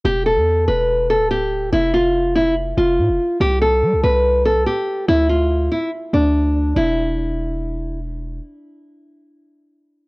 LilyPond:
<<
  \new Staff \with { instrumentName = "Nylon-string guitar" } { \time 4/4 \key e \phrygian \tempo 4 = 143 g'8 a'4 b'4 a'8 g'4 | e'8 f'4 e'8 r8 f'4. | g'8 a'4 b'4 a'8 g'4 | e'8 f'4 e'8 r8 d'4. |
e'2. r4 | r1 | }
  \new Staff \with { instrumentName = "808-style bass" } { \clef bass \time 4/4 \key e \phrygian e,,8. e,8. e,,4~ e,,16 d,,4~ d,,16 | f,,2~ f,,8 f,,8 a,16 f,,16 r8 | c,4 g16 c,16 c,4 b,,16 c,16 r4 | d,4. r4 d,4. |
e,,1 | r1 | }
>>